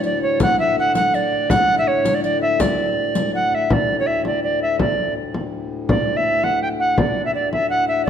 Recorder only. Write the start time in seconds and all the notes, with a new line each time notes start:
0.04 D5
0.22 C#5
0.42 F#5
0.59 E5
0.79 F#5
0.95 F#5
1.14 D5
1.50 F#5
1.78 E5
1.87 C#5
2.15 D5
2.23 D5
2.42 E5
2.61 D5
3.35 F#5
3.55 E5
3.73 D5
4.00 C#5
4.07 E5
4.26 D5
4.43 D5
4.62 E5
4.80 D5
5.89 D5
6.17 E5
6.44 F#5
6.62 G5
6.80 F#5
6.98 D5
7.25 E5
7.34 D5
7.52 E5
7.70 F#5
7.88 E5
8.05 D5